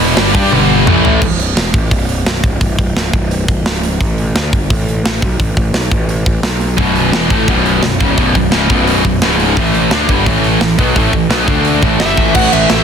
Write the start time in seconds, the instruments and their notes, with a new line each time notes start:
Already playing: picked electric bass E1, distorted electric guitar E2 B2 E3
0.16 picked electric bass G1, distorted electric guitar G2 D3 G3, snare, open hi-hat
0.32 picked electric bass G2, distorted electric guitar G3 D4 G4, kick
0.51 picked electric bass G1, distorted electric guitar G2 D3 G3, high tom
0.86 picked electric bass A1, distorted electric guitar A2 E3 A3, mid tom
1.05 floor tom
1.22 picked electric bass B0, kick, crash
1.40 open hi-hat
1.57 picked electric bass E1, snare, open hi-hat
1.74 picked electric bass A1, kick, open hi-hat
1.91 picked electric bass B0, kick, open hi-hat
2.09 open hi-hat
2.25 picked electric bass B0, snare, open hi-hat
2.43 picked electric bass C#1, kick, open hi-hat
2.61 picked electric bass B0, kick, open hi-hat
2.78 picked electric bass B0, kick, open hi-hat
2.96 picked electric bass C#1, snare, open hi-hat
3.13 picked electric bass B0, kick, open hi-hat
3.31 open hi-hat
3.48 picked electric bass B0, kick, open hi-hat
3.66 picked electric bass C#1, snare, open hi-hat
3.83 open hi-hat
4.01 picked electric bass A1, kick, open hi-hat
4.18 open hi-hat
4.35 picked electric bass D2, snare, open hi-hat
4.53 picked electric bass G1, kick, open hi-hat
4.70 picked electric bass A1, kick, open hi-hat
4.89 open hi-hat
5.04 picked electric bass A1, snare, open hi-hat
5.22 picked electric bass B1, kick
5.39 picked electric bass A1, kick, open hi-hat
5.57 picked electric bass A1, kick, open hi-hat
5.73 picked electric bass B1, snare, open hi-hat
5.91 picked electric bass A1, kick, open hi-hat
6.09 open hi-hat
6.26 picked electric bass A1, kick
6.43 picked electric bass B1, snare, open hi-hat
6.61 open hi-hat
6.77 picked electric bass B0, distorted electric guitar B1 F#2 B2, kick, open hi-hat
6.96 open hi-hat
7.13 picked electric bass E1, distorted electric guitar E2 B2 E3, snare, open hi-hat
7.30 picked electric bass A1, distorted electric guitar A2 E3 A3, kick, open hi-hat
7.48 picked electric bass B0, distorted electric guitar B1 F#2 B2, kick, open hi-hat
7.66 open hi-hat
7.82 picked electric bass B0, distorted electric guitar B1 F#2, snare, open hi-hat
8.00 picked electric bass C#1, distorted electric guitar C#2 G#2 C#3, kick
8.17 picked electric bass B0, distorted electric guitar B1 F#2 B2, kick, open hi-hat
8.35 picked electric bass B0, distorted electric guitar B1 F#2, kick, open hi-hat
8.52 picked electric bass C#1, distorted electric guitar C#2 G#2 C#3, snare, open hi-hat
8.70 picked electric bass B0, distorted electric guitar B1 F#2 B2, kick, open hi-hat
8.87 open hi-hat
9.04 picked electric bass B0, distorted electric guitar B1 F#2, kick
9.22 picked electric bass C#1, distorted electric guitar C#2 G#2 C#3, snare, open hi-hat
9.40 open hi-hat
9.57 picked electric bass A1, distorted electric guitar A2 E3 A3, kick
9.74 open hi-hat
9.91 picked electric bass D2, distorted electric guitar D3 A3 D4, snare, open hi-hat
10.09 picked electric bass G1, distorted electric guitar G2 D3 G3, kick, open hi-hat
10.26 picked electric bass A1, distorted electric guitar A2 E3 A3, kick, open hi-hat
10.44 open hi-hat
10.60 picked electric bass A1, distorted electric guitar A2 E3, snare, open hi-hat
10.78 picked electric bass B1, distorted electric guitar B2 F#3 B3, kick, open hi-hat
10.95 picked electric bass A1, distorted electric guitar A2 E3 A3, kick, open hi-hat
11.13 picked electric bass A1, distorted electric guitar A2 E3, kick, open hi-hat
11.29 picked electric bass B1, distorted electric guitar B2 F#3 B3, snare, open hi-hat
11.47 picked electric bass D2, distorted electric guitar D3 A3 D4, kick, open hi-hat
11.65 open hi-hat
11.82 picked electric bass A1, distorted electric guitar A2 E3 A3, kick, open hi-hat
11.99 picked electric bass G1, distorted electric guitar G2 D3 G3, lead electric guitar E5, snare, open hi-hat
12.17 picked electric bass A1, distorted electric guitar A2 E3 A3, kick, open hi-hat
12.33 picked electric bass A1, distorted electric guitar A2 E3, lead electric guitar F#5, kick, crash
12.38 distorted electric guitar A3
12.52 picked electric bass A1, lead electric guitar E5, ride
12.70 picked electric bass A1, snare, ride